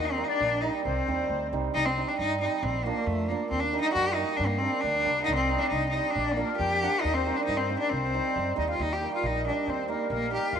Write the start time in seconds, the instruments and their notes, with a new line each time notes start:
Already playing: upright bass D#2, accordion D#5
0.05 cello C4
0.17 hammered dulcimer G3 A#3 D#4, accordion D#5
0.24 cello D#4
0.28 cello D4, accordion D5
0.41 upright bass A#1
0.61 hammered dulcimer G3 A#3 D#4, cello D#4, accordion D#5
0.85 upright bass C2, cello C4, accordion C5
1.08 upright bass D#2, hammered dulcimer G3 C4 D#4
1.29 upright bass D2
1.52 upright bass C2, hammered dulcimer G3 C4 D#4
1.74 upright bass C2, cello D#4
1.86 cello C4
1.98 hammered dulcimer G3 C4 D#4
2.08 cello D4
2.19 upright bass G2, cello D#4
2.41 hammered dulcimer G3 C4 D#4, cello D#4
2.63 upright bass A#1, cello C4
2.85 hammered dulcimer F3 A#3 D4, cello A#3
3.06 upright bass F2, cello A3
3.28 hammered dulcimer F3 A#3 D4, cello A#3
3.50 upright bass D#2, cello C4
3.60 cello D4
3.73 hammered dulcimer G3 A#3 D#4
3.81 cello D#4
3.93 upright bass F#2, cello F#4
4.03 cello G4
4.14 hammered dulcimer G3 A#3 D#4, cello D#4
4.37 upright bass G2, cello D4
4.47 cello A#3
4.58 hammered dulcimer G3 A#3 D4, cello C4
4.81 upright bass D2, cello D4
5.05 upright bass C2, hammered dulcimer G3 A#3 D4
5.21 cello D#4, accordion F#5
5.28 upright bass C2, accordion D#5
5.35 cello C4
5.48 hammered dulcimer G3 C4 D#4
5.58 cello C4 D4, accordion D5
5.67 cello D#4, accordion D5
5.71 upright bass C2, accordion D#5
5.90 hammered dulcimer C4, cello D#4
5.94 hammered dulcimer G3 D#4, accordion D#5
6.11 cello D4
6.16 upright bass A#1, accordion D5
6.33 hammered dulcimer F3 A#3 D4, cello A#3
6.39 accordion A#4
6.57 upright bass F2, cello G4, accordion G5
6.82 hammered dulcimer F3 A#3 D4, accordion F#5
7.01 upright bass D#2, cello D#4, accordion D#5
7.14 cello C4, accordion C5
7.26 hammered dulcimer G3 A#3 D#4
7.36 cello D4
7.45 upright bass G2, cello D#4
7.49 accordion D#5
7.57 cello C4, accordion C5
7.69 hammered dulcimer G3 A#3 D#4
7.79 cello D4, accordion D5
7.90 upright bass C2, cello C4, accordion C5
8.14 hammered dulcimer G3 C4 D#4
8.36 upright bass F#2
8.56 upright bass D#2, hammered dulcimer G3 C4 D#4, cello D#4, accordion D#5
8.68 cello F4, accordion F5
8.76 upright bass D#2, accordion D#5 F5
8.82 cello D#4
8.90 cello G4, accordion G5
9.01 hammered dulcimer G3 A#3 D#4
9.13 cello F4, accordion F5
9.23 upright bass A#1, cello D#4, accordion D#5
9.45 hammered dulcimer G3 A#3 D#4, cello D4
9.67 upright bass D#2, cello C4, accordion C5
9.88 hammered dulcimer G3 A#3 D#4, cello A#3, accordion A#4
10.09 upright bass A#1, cello A#3, accordion A#4
10.31 hammered dulcimer G3 A#3 D#4, cello G4
10.53 upright bass D#2, cello F4, accordion F5